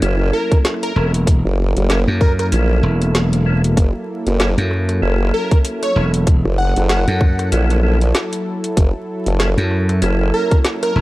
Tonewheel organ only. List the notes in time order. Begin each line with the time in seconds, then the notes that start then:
0.02 A#3 C#4 E4 A4
0.96 A#3 C#4 E4 A4
1.90 A#3 C#4 E4 A4
2.52 A#3 C#4 E4 A4
3.46 A#3 C#4 E4 A4
4.40 A#3 C#4 E4 A4
5.02 A#3 C#4 E4 A4
5.96 A#3 C#4 E4 A4
6.90 A#3 C#4 E4 A4
7.52 A#3 C#4 E4 A4
7.83 A#3 C#4 E4 A4
9.40 A#3 C#4 E4 A4
10.02 A#3 C#4 E4 A4
10.96 A#3 C#4 E4 A4